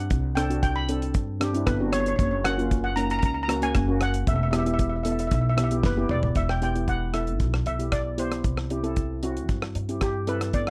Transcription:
Already playing: C4 D4 G4 F#5
0.10 C2, kick, closed hi-hat
0.35 C4 D4 A4 G5, cross-stick, closed hi-hat
0.50 C4 D4 F#4, closed hi-hat
0.63 G5, kick, closed hi-hat
0.76 B5
0.89 C4 D4 A4, closed hi-hat
1.02 closed hi-hat
1.14 G2, kick, closed hi-hat
1.40 C4 D4 G4, cross-stick, closed hi-hat
1.54 C4 D4 E4, closed hi-hat
1.66 G1 B4, kick, cross-stick, closed hi-hat
1.80 C4 D4 F#4
1.92 C#5, cross-stick, closed hi-hat
2.00 C#5
2.06 C#5, closed hi-hat
2.16 F#1 C#5, kick, closed hi-hat
2.23 C#5
2.31 C#5
2.44 A#3 C#4 F#4 F#5, cross-stick, closed hi-hat
2.58 A#3 C#4 F4, closed hi-hat
2.71 kick, closed hi-hat
2.84 F#5
2.96 A#3 C#4 D#4 A#5, closed hi-hat
3.03 A#5
3.10 A#5, closed hi-hat
3.19 A#5, closed hi-hat
3.23 C#2 A#5, kick
3.34 A#5
3.43 A#5
3.48 A#3 C#4 F#4 A#5, cross-stick, closed hi-hat
3.61 A#3 C#4 F#4 G#5, closed hi-hat
3.75 F#1, kick, cross-stick, closed hi-hat
3.88 A#3 C#4 F#4
4.01 F#5, cross-stick, closed hi-hat
4.14 closed hi-hat
4.27 E1 E5, kick, closed hi-hat
4.36 E5
4.43 E5
4.51 B3 E4 G4 E5, cross-stick, closed hi-hat
4.58 E5
4.66 B3 E4 G4 E5, closed hi-hat
4.74 E5
4.79 E5, kick, closed hi-hat
4.89 E5
4.96 E5
5.03 B3 E4 A4 E5, closed hi-hat
5.12 E5
5.19 E5, closed hi-hat
5.27 E5, closed hi-hat
5.32 B1 E5, kick
5.41 E5
5.49 E5
5.57 B3 E4 G4 E5, cross-stick, closed hi-hat
5.64 E5
5.71 B3 E4 G4, closed hi-hat
5.83 F#1 B4, kick, snare
5.97 B3 E4 G4
6.09 E1 D5, mid tom
6.23 floor tom
6.35 E1 E5, kick, closed hi-hat
6.49 G5, cross-stick
6.62 B3 E4 G4 G5, closed hi-hat
6.75 B3 E4 G4, closed hi-hat
6.88 F#5, kick, closed hi-hat
7.14 B3 E4 A4 E5, cross-stick, closed hi-hat
7.27 closed hi-hat
7.40 B1, kick, closed hi-hat
7.54 cross-stick
7.66 B1 E5, closed hi-hat
7.79 B3 E4 G4, closed hi-hat
7.92 D5, kick, cross-stick, closed hi-hat
8.18 B3 E4 G4 C5, closed hi-hat
8.32 cross-stick, closed hi-hat
8.44 C2, kick, closed hi-hat
8.57 cross-stick
8.70 C4 E4 G4, closed hi-hat
8.83 C4 E4 A4, closed hi-hat
8.96 kick, closed hi-hat
9.23 C4 E4 F#4, closed hi-hat
9.37 closed hi-hat
9.49 G2, kick, closed hi-hat
9.62 cross-stick
9.75 G2, closed hi-hat
9.89 C4 E4 G4, closed hi-hat
10.01 G4, kick, cross-stick, closed hi-hat
10.27 C4 E4 A4 B4, closed hi-hat
10.41 cross-stick, closed hi-hat
10.53 G1 D5, kick, closed hi-hat

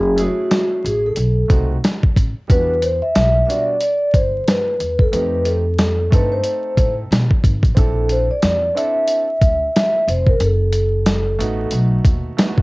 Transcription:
Already playing: F#1 G#4
0.16 A3 C#4 E4 G#4, closed hi-hat
0.21 F#4
0.51 snare, closed hi-hat
0.84 A1 G#4, closed hi-hat
1.06 A4
1.16 B1, closed hi-hat
1.48 C2 A3 C4 D#4 F#4, kick, closed hi-hat
1.84 snare, closed hi-hat
2.03 kick
2.16 A1, kick, closed hi-hat
2.48 E2 G3 B3 D4 F#4 B4, kick, closed hi-hat
2.82 C5, closed hi-hat
3.02 E5
3.16 B1, snare, closed hi-hat
3.46 G3 B3 D4 F#4 D5 E5
3.50 closed hi-hat
3.81 D5, closed hi-hat
4.14 G1 C5, kick, closed hi-hat
4.48 B4, snare, closed hi-hat
4.80 E2, closed hi-hat
4.99 A4, kick
5.12 F2 A3 C4 D#4 G4 B4, closed hi-hat
5.45 A4, closed hi-hat
5.78 snare, closed hi-hat
6.10 G2 A3 C4 D#4 A4 B4, kick, closed hi-hat
6.32 C5
6.44 closed hi-hat
6.77 A2, kick, closed hi-hat
7.11 B2, snare, closed hi-hat
7.31 kick
7.44 G#1, kick, closed hi-hat
7.63 A1, kick, closed hi-hat
7.75 A#1 C4 D4 E4 A4, kick, closed hi-hat
8.09 C5, closed hi-hat
8.31 D5
8.42 F2, snare, closed hi-hat
8.75 C4 D4 E4 A4 E5, closed hi-hat
9.07 closed hi-hat
9.41 D2, kick, closed hi-hat
9.76 E5, snare, closed hi-hat
10.07 F1 C5, closed hi-hat
10.27 A#4, kick
10.40 F#1 A4, closed hi-hat
10.73 closed hi-hat
11.06 snare, closed hi-hat
11.38 A1 A3 B3 D#4 F#4, closed hi-hat
11.71 B1, closed hi-hat
12.05 D#2, kick, closed hi-hat
12.37 A3 B3 D#4 E4, snare, closed hi-hat
12.46 F#4
12.58 kick

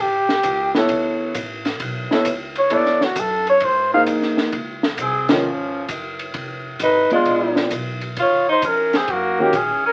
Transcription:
0.00 A1 G4
0.29 snare
0.43 C#2, kick, hi-hat pedal, ride
0.75 B3 E4 A4 C#5, snare
0.89 D2, kick, ride
1.34 A1, kick, hi-hat pedal, ride
1.65 snare, ride
1.80 B1, kick, ride
2.11 B3 E4 A4 C#5, snare
2.25 C#2, kick, hi-hat pedal, ride
2.56 C#5, ride
2.70 D2 B3 E4 A4 C#5 D5, kick, ride
2.86 snare
3.01 F#4, snare
3.16 F#2, kick, hi-hat pedal, ride
3.20 A4
3.47 C#5, ride
3.60 G#2, kick, ride
3.65 C5
3.93 A#3 D#4 G#4 C5 F5
4.07 F2, kick, hi-hat pedal, ride
4.22 snare
4.37 snare
4.52 C#2, kick, ride
4.83 snare
4.98 C2 C4, kick, hi-hat pedal, ride
5.03 G#4
5.29 D#3 F3 G#3 C#4 F4, snare, ride
5.44 G#1
5.89 F#1, kick, hi-hat pedal, ride
6.19 ride
6.34 F1, kick, ride
6.79 G#1 D#4 B4, kick, hi-hat pedal, ride
7.10 G#3 B3 D4 F4, muted upright bass stroke, ride
7.25 A#1, kick, ride
7.56 snare
7.71 B1, kick, hi-hat pedal, ride
8.01 ride
8.17 D#2 F4, kick, ride
8.22 C#5
8.49 D#4 C5
8.62 F2 C#4, kick, hi-hat pedal, ride
8.68 A#4
8.93 C4 G#4, snare, ride
9.08 F#2 F#4, kick, ride
9.13 A#3
9.39 D#3 G#3 A#3 C#4 F#4 G4
9.53 A#2 C#4 G#4, kick, hi-hat pedal, ride
9.69 F#2
9.84 D#2 C#4 A#4

